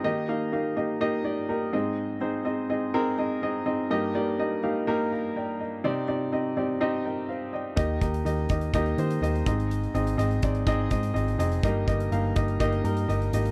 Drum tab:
HH |----------------|----------------|----------------|----------------|
BD |----------------|----------------|----------------|----------------|

HH |x-xxx-xxxxxxxxxx|xxxxxxxxx-xxxxxx|x-xxx-xxxxxxxxxx|
BD |o-o---o-o-----o-|------o-o-o-----|o-o---o-o-------|